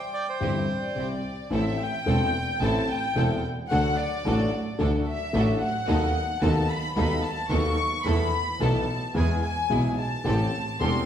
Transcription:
Already playing: G5
0.14 D5
0.29 C5
0.40 G1 G2 E3 G3 C4 E4 G4
0.73 D5
0.95 C2 C3 C4 E4 G4
1.50 A1 A2 E3 A3 C4 E4 A4 E5
1.80 G5
2.06 E1 E2 E3 A3 C4 E4 A4
2.61 A1 A2 E3 A3 C4 E4 A4 A5
2.89 G5
3.15 E1 E2 E3 A3 C4 E4 A4
3.70 D2 D3 F#3 A3 D4 F#4 A4 F#5
3.97 D5
4.25 A1 A2 F#3 A3 D4 F#4 A4
4.79 D2 D3 F#3 A3 D4 F#4 A4
5.07 E5
5.33 A1 A2 F#3 A3 D4 F#4 A4
5.62 F#5
5.87 D#2 D#3 F#3 B3 D#4 A4
6.42 D#2 D#3 F#3 B3 D#4 A4 A5
6.70 B5
6.96 D#2 D#3 F#3 B3 D#4 A4 B5
7.23 A5
7.50 D#2 D#3 F#3 B3 D#4 A4 C#6
8.04 E2 E3 A3 B3 E4 A4 B5
8.60 B1 B2 E3 A3 B3 E4 A4 A5
9.14 E2 E3 G#3 B3 E4 G#4 G#5
9.43 G#5
9.70 B1 B2 E3 G#3 B3 E4 G#4
10.00 A5
10.24 A1 A2 E3 A3 C4 G4 A4
10.80 E1 E2 E3 A3 C4 G4 A4 C6

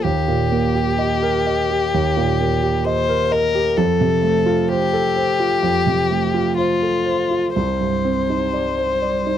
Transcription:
0.04 D#2 G4
0.28 A#2
0.52 A#3
0.75 G4
0.99 D#5
1.22 A#4
1.46 D#5
1.70 G4
1.94 D#2
2.17 A#2
2.40 A#3
2.63 G4
2.85 C5 D#5
3.09 A#4
3.31 A#4 D#5
3.55 G4
3.77 F2 A4
4.01 C3
4.23 A3
4.46 F4
4.68 G4 C5
4.93 A4
5.16 C5
5.40 F4
5.63 F2
5.86 C3
6.11 A3
6.34 F4
6.57 F4 C5
6.83 A4
7.06 C5
7.31 F4
7.56 C2 C5
7.80 G2
8.05 C4
8.30 D#4
8.53 D5
8.78 C5
9.02 D5
9.26 D#4

